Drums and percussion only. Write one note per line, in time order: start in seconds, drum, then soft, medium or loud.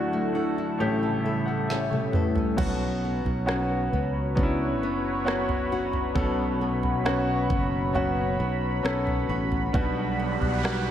1.70 snare soft
1.92 high tom soft
2.13 mid tom medium
2.36 floor tom medium
2.58 kick medium
2.58 floor tom medium
2.58 crash medium
3.26 floor tom soft
3.49 cross-stick medium
3.93 floor tom soft
4.37 kick medium
4.37 floor tom soft
5.28 cross-stick medium
5.49 floor tom medium
5.93 floor tom soft
6.16 kick medium
6.16 floor tom loud
6.83 floor tom medium
7.06 cross-stick medium
7.50 kick medium
7.50 floor tom soft
7.95 floor tom medium
8.86 cross-stick medium
9.07 floor tom medium
9.52 floor tom soft
9.74 kick medium
9.74 floor tom medium
10.42 floor tom medium
10.65 cross-stick medium